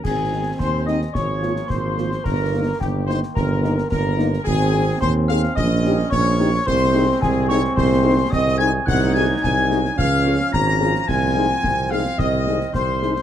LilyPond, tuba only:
\new Staff \with { instrumentName = "Tuba" } { \clef bass \time 2/4 \key aes \major \tempo 4 = 109 aes,,4 ees,4 | aes,,4 aes,,4 | g,,4 g,,4 | g,,4 g,,4 |
aes,,4 ees,4 | bes,,4 bes,,4 | c,4 c,4 | c,4 c,4 |
c,4 c,4 | des,4 aes,,4 | c,4 c,4 | c,4 c,4 | }